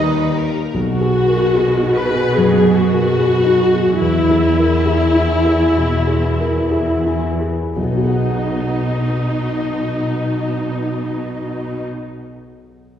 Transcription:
Already playing: D#2 A#2 D#3 G3 D#4 G4 B4 D#5
0.21 G4
0.37 A#4
0.48 A#3
0.74 B1 B2 F#4
1.01 B3 G#4
1.29 G#4 A#4
1.55 G#4 B4
1.82 D#4 D#5
1.95 B4
2.10 G#4
2.36 F#2 F#3 G#4
2.64 B3 G#4
2.76 F#4
2.91 G#4 A#4
3.18 G#4 B4
3.44 D#4 D#5
3.73 G#4
4.01 E2 E3 E4
4.29 E4 G#4
4.58 A#4 B4
4.86 G#4 E5
5.15 E4 G#5
5.45 G#4 B4
5.77 B2 B3
6.07 E4 G#4
6.40 A#4 B4
6.71 G#4 E5
7.06 E4 G#5
7.41 G#4 B4
7.76 B1 B2 D#4
7.83 B2 B3
7.90 B3 F#4
7.97 F#4 G#4
8.04 G#4 F#5
8.11 F#5

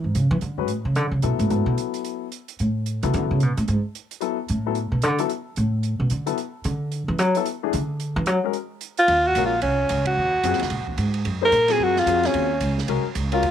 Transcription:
0.04 G#2
0.15 C#3, closed hi-hat
0.31 E3
0.41 D3, closed hi-hat
0.58 F#2 G#3 C#4 F#4 B4
0.68 A2, closed hi-hat
0.85 C#3
0.95 D3, closed hi-hat
1.11 C#3
1.22 B2 F#3 B3 E4 A4, closed hi-hat
1.39 A2, closed hi-hat
1.50 G#2 F#3 B3 E4 A4, closed hi-hat
1.66 B2
1.78 closed hi-hat
1.94 closed hi-hat
2.04 closed hi-hat
2.32 closed hi-hat
2.48 closed hi-hat
2.59 A2, closed hi-hat
2.86 closed hi-hat
3.03 C#3 F#3 B3 E4 A4, closed hi-hat
3.14 D3, closed hi-hat
3.31 C#3
3.40 B2, closed hi-hat
3.57 A2, closed hi-hat
3.68 G#2, closed hi-hat
3.95 closed hi-hat
4.11 closed hi-hat
4.21 F#3 B3 E4 A4, closed hi-hat
4.49 A2, closed hi-hat
4.66 F#3 B3 E4 A4
4.75 closed hi-hat
4.92 B2
5.02 D3, closed hi-hat
5.19 F#3 B3 E4 A4, closed hi-hat
5.29 closed hi-hat
5.56 A2, closed hi-hat
5.83 closed hi-hat
6.00 B2
6.10 D3, closed hi-hat
6.26 F#3 B3 E4 A4, closed hi-hat
6.38 closed hi-hat
6.64 D3, closed hi-hat
6.92 closed hi-hat
7.08 E3
7.19 F#3, closed hi-hat
7.35 F#3 B3 E4 A4, closed hi-hat
7.46 closed hi-hat
7.63 E3 A3 D4 G#4
7.73 D3, closed hi-hat
8.00 closed hi-hat
8.16 E3
8.26 F#3, closed hi-hat
8.44 G#3 C#4 F#4 A#4
8.53 closed hi-hat
8.81 closed hi-hat
8.97 F4, closed hi-hat
9.08 D#2, ride
9.27 F#4
9.35 A#1 G#3 C#4 F#4 A#4, hi-hat pedal, ride
9.46 F4
9.62 C2 C#4, ride
9.89 C#2, hi-hat pedal, ride
10.06 F#4, kick, ride
10.17 D#2
10.43 F#2 F#3 C4 F4 G#4, hi-hat pedal, ride
10.53 D#2, snare
10.59 C#2, snare, ride
10.70 A#2, ride
10.80 F#2
10.87 D#2, kick
10.98 G#2, hi-hat pedal, ride
11.14 ride
11.25 F#2, ride
11.42 A#3 D#4 G#4 A#4 C5
11.52 A#2, hi-hat pedal, ride
11.68 F#3 C4 F4 G#4, snare, ride
11.79 F#2
11.84 F#4
11.96 F4, snare
12.06 F2 F#3 C4 F4 G#4, hi-hat pedal, ride
12.23 C#4, snare, ride
12.34 D#2, ride
12.61 C#2, hi-hat pedal, ride
12.78 snare
12.88 C2 G#3 C#4 F#4 A#4, ride
13.05 muted upright bass stroke
13.15 C#2, hi-hat pedal, ride
13.32 G#3 C#4 F4 F#4 A#4, ride
13.43 D#2, ride

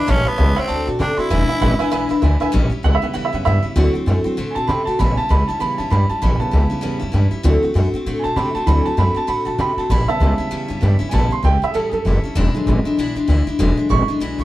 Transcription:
Already playing: D4
0.07 A1 A2 E3 G3 C#4 E4 C#5 E5 A5
0.25 G3 B3 C#4 E4 C#5 E5 A5, muted upright bass stroke
0.37 C#2 E3 G3 C#4 E4 C#5 E5 A5
0.56 G3 C4 C#4 E4 C#5 E5 F#5, muted upright bass stroke
0.67 D2 D3 A3 C4 F#4 D5 F#5 A5
0.86 B2 A3 C4 F#4 D5 F#5 A5
0.99 C3 D3 A3 C4 D4 F#4 D5 F#5 A5
1.17 A3 C4 E4 F#4 D5 F#5 C6, muted upright bass stroke
1.30 E1 E2 B2 E3 G#3 D4 E4 B4 E5 G#5
1.48 E3 G#3 D4 E4 B4 E5 G#5
1.60 G#1 E3 G#3 D4 E4 B4 E5 F#5
1.79 E3 G#3 D4 E4 B4 E5 G#5, muted upright bass stroke
1.91 B1 E2 B2 E3 G#3 D4 E4 B4 E5 G#5
2.09 C#2 E3 G#3 D4 E4 B4 E5 B5
2.21 D2 E3 G#3 D4 E4 B4 E5 G#5
2.40 E3 G#3 D4 E4 B4 E5 G#5, muted upright bass stroke
2.52 A1 A2 E3 G3 C#4 E4
2.70 G3 C#4 E4, muted upright bass stroke
2.83 C#2 E3 G3 C#4 E4 F#5
2.95 E5
3.01 C#3 G3 B3 C#4 E4 F#5, muted upright bass stroke
3.13 E2 A2 E3 G3 C#4 E4 F#5
3.25 E5
3.33 F#2 G3 C#4 E4 F#5
3.45 G2 E3 G3 C#4 E4 E5
3.63 G3 C#4 E4, muted upright bass stroke
3.75 D2 D3 E3 F#3 A3 C4 F#4
3.94 A3 C4 F#4, muted upright bass stroke
4.06 F#2 D3 A3 C4 F#4
4.24 E3 F#3 A3 C4 F#4, muted upright bass stroke
4.37 A2 D3 A3 C4 F#4
4.50 G#5
4.55 B2 A3 C4 F#4 A5
4.67 C3 D3 A3 C4 F#4 B5
4.85 A3 C4 F#4 A5, muted upright bass stroke
4.98 A1 A2 C#3 E3 G3 B3 C#4 E4 B5
5.13 G#5
5.17 G3 C#4 E4 A5, muted upright bass stroke
5.29 C#2 E3 G3 C#4 E4 B5
5.48 G3 C#4 E4 A5, muted upright bass stroke
5.59 E2 A2 C#3 E3 G3 B3 C#4 E4 B5
5.78 F#2 G3 C#4 E4 A5
5.90 G2 E3 G3 C#4 E4 B5
6.09 G3 C#4 E4 A5, muted upright bass stroke
6.22 A1 A2 E3 G3 C#4 E4 B5
6.39 C#3 G3 B3 C#4 E4 A5, muted upright bass stroke
6.51 C#2 E3 G3 C#4 E4
6.70 G3 C#4 E4, muted upright bass stroke
6.81 E2 A2 C#3 E3 G3 B3 C#4 E4
7.00 F#2 G3 C#4 E4
7.12 G2 E3 G3 C#4 E4
7.31 G3 C#4 E4, muted upright bass stroke
7.43 D2 D3 E3 F#3 A3 C4 F#4
7.62 A3 C4 F#4, muted upright bass stroke
7.74 F#2 D3 A3 C4 F#4
7.93 A3 C4 F#4, muted upright bass stroke
8.06 A2 D3 A3 C4 F#4
8.19 G#5
8.23 B2 A3 C4 F#4 A5
8.36 C3 D3 A3 C4 F#4 B5
8.55 A3 C4 F#4 A5, muted upright bass stroke
8.65 D2 D3 E3 F#3 A3 C4 F#4 B5
8.81 G#5
8.85 A3 C4 F#4 A5, muted upright bass stroke
8.97 F#2 D3 A3 C4 F#4 B5
9.15 A3 C4 F#4 A5, muted upright bass stroke
9.27 A2 D3 A3 C4 F#4 B5
9.45 B2 A3 C4 F#4 A5
9.58 C3 D3 A3 C4 F#4 B5
9.77 A3 C4 F#4 A5, muted upright bass stroke
9.89 A1 A2 E3 G3 C#4 E4 B5
10.08 C#3 G3 B3 C#4 E4 E5 A5, muted upright bass stroke
10.20 C#2 E3 G3 C#4 E4
10.38 G3 C#4 E4, muted upright bass stroke
10.51 E2 A2 E3 G3 C#4 E4
10.68 F#2 G3 C#4 E4
10.81 G2 E3 G3 C#4 E4
10.99 G3 C#4 E4, muted upright bass stroke
11.09 A1 A2 C#3 E3 G3 C#4 E4 G#5
11.13 B3 A5
11.31 G3 C#4 E4 C6, muted upright bass stroke
11.43 C#2 E3 G3 C#4 E4 G5
11.62 G3 C#4 E4 E5, muted upright bass stroke
11.70 A2 E3 G#4
11.75 E2 G3 C#4 E4 A4
11.89 F#2 C#4 E4 G#4
11.93 G3 A4
12.05 F#1 E3 G3 C#4 E4
12.23 G3 C#4 E4, muted upright bass stroke
12.35 E1 E2 B2 E3 G#3 D4 E4
12.54 D3 E3 F#3 G#3 D4 E4, muted upright bass stroke
12.66 G#1 E3 G#3 D4 E4
12.84 E3 G#3 D4 E4, muted upright bass stroke
12.97 B1 E2 B2 E3 G#3 D4 E4
13.15 C#2 E3 G#3 D4 E4
13.28 D2 E3 G#3 D4 E4
13.47 E3 G#3 D4 E4, muted upright bass stroke
13.59 E1 E2 B2 D3 E3 F#3 G#3 D4 E4
13.77 E3 G#3 D4 E4, muted upright bass stroke
13.89 G#1 E3 G#3 D4 E4 C#6
14.08 E3 G#3 D4 E4, muted upright bass stroke
14.20 B1 E2 B2 E3 G#3 D4 E4
14.39 C#2 G#3 D4 E4 C#6

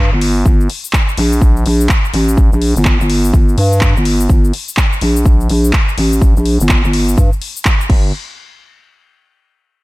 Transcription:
Already playing: G2
0.12 G1
0.21 open hi-hat
0.46 G1, kick, shaker
0.61 shaker
0.70 open hi-hat
0.85 shaker
0.93 kick, clap, shaker
1.09 shaker
1.17 A#1, open hi-hat
1.33 shaker
1.42 kick, shaker
1.57 shaker
1.66 A#1, open hi-hat
1.81 shaker
1.89 kick, clap, shaker
2.05 shaker
2.13 A1, open hi-hat
2.29 shaker
2.38 kick, shaker
2.53 A#1, shaker
2.62 open hi-hat
2.76 G1, shaker
2.85 kick, clap, shaker
3.00 G1, shaker
3.10 open hi-hat
3.25 shaker
3.34 G1, kick, shaker
3.49 shaker
3.57 G2, open hi-hat
3.73 shaker
3.81 kick, clap, shaker
3.96 G1, shaker
4.05 open hi-hat
4.20 shaker
4.30 G1, kick, shaker
4.45 shaker
4.53 open hi-hat
4.69 shaker
4.77 kick, clap, shaker
4.93 shaker
5.01 A#1, open hi-hat
5.16 shaker
5.26 kick, shaker
5.41 shaker
5.50 A#1, open hi-hat
5.65 shaker
5.73 kick, clap, shaker
5.89 shaker
5.98 A1, open hi-hat
6.13 shaker
6.22 kick, shaker
6.36 A#1, shaker
6.46 open hi-hat
6.60 G1, shaker
6.69 kick, clap, shaker
6.84 G1, shaker
6.93 open hi-hat
7.09 shaker
7.18 G2, kick, shaker
7.33 shaker
7.42 open hi-hat
7.57 shaker
7.65 kick, clap, shaker
7.81 shaker
7.90 G1, kick, crash

